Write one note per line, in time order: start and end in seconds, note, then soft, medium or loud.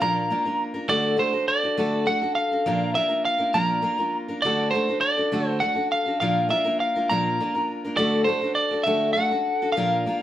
0.01 0.30 A#2 medium
0.01 0.30 F3 medium
0.01 0.29 A#3 medium
0.01 0.30 D4 medium
0.01 0.31 F4 medium
0.01 0.31 A#4 medium
0.01 0.63 A#5 loud
0.30 0.45 A#3 medium
0.30 0.45 D4 medium
0.30 0.44 F4 medium
0.30 0.44 A#4 medium
0.45 0.75 A#3 soft
0.45 0.74 D4 medium
0.45 0.73 F4 medium
0.45 0.73 A#4 medium
0.74 0.88 A#3 soft
0.74 0.88 D4 medium
0.74 0.89 F4 soft
0.74 0.89 A#4 medium
0.88 1.18 D3 medium
0.88 1.15 A3 medium
0.88 1.16 D4 medium
0.88 1.17 F#4 loud
0.88 1.17 A4 medium
0.88 1.19 D5 loud
1.17 1.32 A3 medium
1.17 1.32 D4 medium
1.17 1.33 F#4 medium
1.17 1.31 A4 medium
1.17 1.48 C5 medium
1.33 1.63 D4 soft
1.33 1.63 F#4 medium
1.33 1.62 A4 medium
1.48 2.09 D5 loud
1.63 1.77 D4 soft
1.63 1.77 F#4 medium
1.63 1.78 A4 medium
1.77 2.07 D3 medium
1.77 2.05 A3 medium
1.77 2.05 D4 medium
1.77 2.06 F#4 medium
1.77 2.07 A4 medium
2.06 2.21 A3 medium
2.06 2.21 D4 medium
2.06 2.22 F#4 medium
2.06 2.20 A4 medium
2.06 2.34 F#5 medium
2.22 2.52 D4 soft
2.22 2.52 F#4 soft
2.22 2.50 A4 medium
2.35 2.95 F5 loud
2.51 2.65 D4 soft
2.51 2.67 F#4 medium
2.51 2.66 A4 medium
2.66 2.95 A#2 medium
2.66 2.95 F3 medium
2.66 2.94 A#3 medium
2.66 2.95 D4 medium
2.66 2.95 F4 medium
2.66 2.96 A#4 medium
2.95 3.09 A#3 medium
2.95 3.09 D4 medium
2.95 3.08 F4 medium
2.95 3.07 A#4 medium
2.95 3.25 E5 medium
3.08 3.39 A#3 soft
3.08 3.39 D4 medium
3.08 3.38 F4 soft
3.08 3.37 A#4 medium
3.25 3.52 F5 loud
3.38 3.53 A#3 medium
3.38 3.54 D4 medium
3.38 3.54 F4 medium
3.38 3.54 A#4 medium
3.53 3.83 A#2 medium
3.53 3.84 F3 medium
3.53 3.81 A#3 medium
3.53 3.82 D4 medium
3.53 3.82 F4 medium
3.53 3.83 A#4 medium
3.53 4.17 A#5 loud
3.82 3.98 A#3 medium
3.82 3.98 D4 medium
3.82 3.98 F4 medium
3.82 3.97 A#4 medium
3.98 4.28 A#3 soft
3.98 4.28 D4 soft
3.98 4.28 F4 medium
3.98 4.27 A#4 medium
4.28 4.43 A#3 soft
4.28 4.43 D4 soft
4.28 4.43 F4 medium
4.28 4.43 A#4 medium
4.42 4.73 D3 medium
4.42 4.72 A3 medium
4.42 4.73 D4 medium
4.42 4.73 F#4 medium
4.42 4.74 A4 medium
4.42 4.70 D5 loud
4.71 4.87 A3 medium
4.71 4.88 D4 medium
4.71 5.00 C5 medium
4.75 4.88 F#4 medium
4.75 4.87 A4 medium
4.88 5.18 D4 soft
4.88 5.17 F#4 soft
4.88 5.15 A4 medium
5.01 5.48 D5 loud
5.17 5.31 D4 soft
5.17 5.32 F#4 soft
5.17 5.31 A4 medium
5.32 5.61 D3 medium
5.32 5.60 A3 medium
5.32 5.60 D4 medium
5.32 5.61 F#4 medium
5.32 5.62 A4 medium
5.48 5.62 C5 loud
5.60 5.76 A3 medium
5.60 5.76 D4 medium
5.60 5.75 F#4 medium
5.60 5.74 A4 medium
5.60 5.88 F#5 medium
5.75 6.06 D4 soft
5.75 6.05 F#4 medium
5.75 6.05 A4 medium
5.92 6.19 F5 loud
6.06 6.21 D4 soft
6.06 6.21 F#4 medium
6.06 6.20 A4 medium
6.20 6.50 A#2 medium
6.20 6.50 F3 medium
6.20 6.48 A#3 medium
6.20 6.49 D4 medium
6.20 6.49 F4 medium
6.20 6.50 A#4 loud
6.20 6.50 F5 loud
6.49 6.64 A#3 medium
6.49 6.64 D4 medium
6.49 6.64 F4 medium
6.49 6.63 A#4 medium
6.49 6.80 E5 loud
6.64 6.95 A#3 soft
6.64 6.94 D4 medium
6.64 6.94 F4 medium
6.64 6.94 A#4 medium
6.80 7.10 F5 medium
6.96 7.09 A#3 soft
6.96 7.10 D4 soft
6.96 7.10 F4 medium
6.96 7.09 A#4 medium
7.09 7.39 A#2 medium
7.09 7.39 F3 medium
7.09 7.39 A#3 medium
7.09 7.39 D4 medium
7.09 7.39 F4 medium
7.09 7.39 A#4 medium
7.09 7.71 A#5 loud
7.40 7.54 A#3 medium
7.40 7.54 D4 medium
7.40 7.54 F4 medium
7.40 7.53 A#4 medium
7.55 7.84 A#3 soft
7.55 7.84 D4 soft
7.55 7.84 F4 medium
7.55 7.83 A#4 medium
7.84 7.97 A#3 soft
7.84 7.98 D4 soft
7.84 7.98 F4 medium
7.84 7.98 A#4 medium
7.97 8.26 D3 medium
7.97 8.25 A3 medium
7.97 8.26 D4 medium
7.97 8.27 F#4 loud
7.97 8.27 A4 loud
7.97 8.24 D5 loud
8.24 8.41 A3 medium
8.24 8.42 D4 medium
8.24 8.55 C5 medium
8.29 8.41 F#4 medium
8.29 8.40 A4 medium
8.41 8.72 D4 soft
8.41 8.71 F#4 soft
8.41 8.70 A4 medium
8.55 8.86 D5 medium
8.71 8.85 D4 soft
8.71 8.86 F#4 medium
8.71 8.85 A4 medium
8.83 9.15 D3 medium
8.83 9.14 A3 medium
8.83 9.15 D4 medium
8.83 9.16 F#4 medium
8.83 9.13 E5 loud
8.88 9.16 A4 loud
9.13 9.30 A3 medium
9.13 9.30 D4 medium
9.13 9.31 F#4 medium
9.13 9.69 F#5 medium
9.17 9.30 A4 medium
9.31 9.61 D4 soft
9.31 9.60 F#4 medium
9.31 9.60 A4 medium
9.62 9.76 D4 soft
9.62 9.76 F#4 medium
9.62 9.75 A4 medium
9.72 10.22 F5 medium
9.77 10.05 A#2 medium
9.77 10.05 F3 medium
9.77 10.05 A#3 medium
9.77 10.05 D4 medium
9.77 10.05 F4 medium
9.77 10.06 A#4 loud
10.06 10.20 A#3 medium
10.06 10.20 D4 medium
10.06 10.20 F4 medium
10.06 10.20 A#4 medium